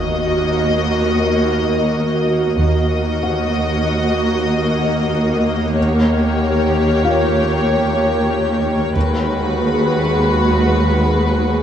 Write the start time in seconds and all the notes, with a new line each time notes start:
Already playing: D#2 A#3 F#4 A#4 D#5 F5, impact
2.58 D#2 A#3 F#4 A#4 D#5 F#5
3.23 F#5
5.77 G4 C#5 G5
7.04 F4 F5
8.95 D#2 G#3 F#4 G#4 B4 F#5